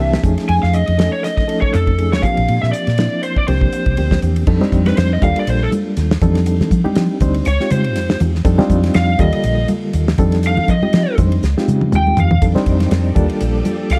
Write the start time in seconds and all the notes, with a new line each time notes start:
Already playing: C2 A#3 C4 D4 G4 E5 A5
0.00 E3
0.13 snare
0.23 F2 F3 A3 C#4 D#4 G#4, kick, hi-hat pedal, ride
0.38 snare, ride
0.49 F2 G#5, ride
0.63 F2 F5, snare
0.73 D#5, hi-hat pedal, ride
0.87 F2, ride
0.98 F3 A3 C#4 D#4 A4, snare, ride
1.13 C#5
1.24 D#5, snare, hi-hat pedal, ride
1.37 kick, snare, ride
1.47 F3 A3 C#4 D#4 A4, ride
1.61 C#5, kick
1.73 F2 A4, hi-hat pedal, ride
1.87 kick, ride
1.98 F3 A3 C#4 D#4 G#4, ride
2.12 C#5, snare
2.22 A#1 F3 A#3 C4 D4 G4 F5, kick, hi-hat pedal, ride
2.37 A#1, ride
2.48 A#2, ride
2.62 A#2 E5, snare
2.72 D5, hi-hat pedal, ride
2.87 A#2, snare, ride
2.98 F3 A#3 C4 D4 E4, snare, ride
3.23 C5, hi-hat pedal, ride
3.37 D5, kick
3.48 C2 F3 A#3 C4 D4 G4 C5, ride
3.61 kick
3.73 muted fretless electric bass stroke, hi-hat pedal, ride
3.86 C2, kick, ride
3.97 D2 F3 A#3 C4 D4 G4, ride
4.11 kick, snare
4.22 E2, hi-hat pedal, ride
4.36 ride
4.47 F2 G3 C4 D4 D#4 A4, kick, crash
4.61 G3 C4 D4 D#4 C5, snare, high conga
4.72 F2, kick, hi-hat pedal, ride
4.86 B4, snare, ride, high conga
4.97 F2 C5, snare, hi-hat pedal, ride
5.13 D#5
5.22 D#2 G3 A#3 D4 F4 A4 F5, kick, hi-hat pedal, ride
5.36 D5, ride
5.47 A#1 C5, hi-hat pedal, ride
5.63 A4
5.72 hi-hat pedal, ride, high conga
5.97 D#2, snare, hi-hat pedal, ride
6.11 snare
6.21 F2 G3 C4 D4 D#4 A4, kick, hi-hat pedal, ride, low conga
6.35 snare, ride
6.46 hi-hat pedal, ride
6.61 snare, high conga, low conga
6.71 F3, kick, hi-hat pedal, ride
6.84 G3 C4 D4 D#4 G4, high conga
6.95 F3, snare, hi-hat pedal, ride
7.20 D2 G3 C4 D4 D#4 C5, kick, hi-hat pedal, ride, low conga
7.34 ride
7.45 C#2 C#5, hi-hat pedal, ride
7.60 G#3 C4 D#4 F4 G4, snare
7.70 C#3 C5, hi-hat pedal, ride, high conga
7.84 ride
7.95 F2, snare, hi-hat pedal, ride
8.10 snare
8.20 E2, hi-hat pedal, ride, low conga
8.35 snare
8.45 F2 G3 C4 D4 D#4 A4, kick, hi-hat pedal, ride
8.58 G3 C4 D4 D#4 F4, snare, high conga, low conga
8.70 F2, kick, hi-hat pedal, ride
8.84 snare, ride, high conga
8.94 F2 F5, snare, hi-hat pedal, ride
9.19 D#2 D3 G3 A#3 F4 A4 D#5, kick, hi-hat pedal, ride, low conga
9.33 ride
9.44 A#1, hi-hat pedal, ride
9.68 hi-hat pedal, ride, high conga
9.93 D#2, hi-hat pedal, ride
10.08 snare
10.18 F2 G3 C4 D4 D#4 A4, kick, hi-hat pedal, ride, low conga
10.32 snare, ride
10.43 hi-hat pedal, ride
10.47 F5
10.57 high conga, low conga
10.68 F3 D#5, kick, hi-hat pedal, ride
10.82 G3 C4 D#4 F4 G4, high conga
10.93 F3, snare, hi-hat pedal, ride
11.18 F2 G3 C4 D4 D#4 C5, kick, hi-hat pedal, ride, high conga, low conga
11.32 ride
11.43 C#2, snare, hi-hat pedal
11.57 G#3 C4 D#4 F4 G4, snare
11.68 C#3, hi-hat pedal, high conga
11.81 high tom, high conga
11.92 D#2 G5, hi-hat pedal, mid tom, high conga
12.07 high conga
12.17 F2 F5, floor tom, hi-hat pedal, low conga
12.31 floor tom, low conga
12.41 F2 D#3 G3 C4 D4 D#4 G4 A4 D5, kick, hi-hat pedal, ride
12.55 G3 C4 D4 D#4 C5, snare, high conga, low conga
12.66 F2, kick, hi-hat pedal, ride
12.80 snare, ride, high conga
12.91 F2, snare, hi-hat pedal, ride
13.15 D#2 F3 G3 A#3 D4 F4 A4, kick, hi-hat pedal, ride, low conga
13.29 ride
13.40 A#1, hi-hat pedal, ride
13.65 hi-hat pedal, ride, high conga
13.90 C2 F5, snare, hi-hat pedal, ride